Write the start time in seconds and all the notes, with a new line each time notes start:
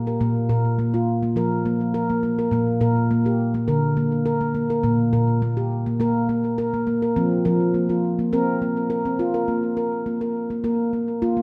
0.07 A#4
0.20 A#2 A#3
0.49 A#2 A#4
0.79 A#3
0.94 F4
1.23 A#3
1.36 F3 A#4
1.66 A#3
1.94 A#4
2.10 A#3
2.23 A#3
2.39 A#4
2.51 A#2 A#3
2.81 A#2 A#4
3.11 A#3
3.26 G4
3.54 A#3
3.68 D3 A#4
3.97 A#3
4.26 A#4
4.41 A#3
4.55 A#3
4.70 A#4
4.83 A#2 A#3
5.13 A#2 A#4
5.42 A#3
5.57 G4
5.86 A#3
6.00 A#3 A#4
6.29 A#3
6.58 A#4
6.74 A#3
6.87 A#3
7.02 A#4
7.16 F3 C4
7.45 F3 A#4
7.74 A#3
7.90 F4
8.19 A#3
8.33 C4 A#4
8.62 A#3
8.90 A#4
9.05 C4
9.19 F4
9.34 A#4
9.48 A#3
9.77 A#4
10.06 A#3
10.21 A#4
10.50 A#3
10.64 A#3 A#4
10.93 A#3
11.22 A#3 F4
11.37 A#3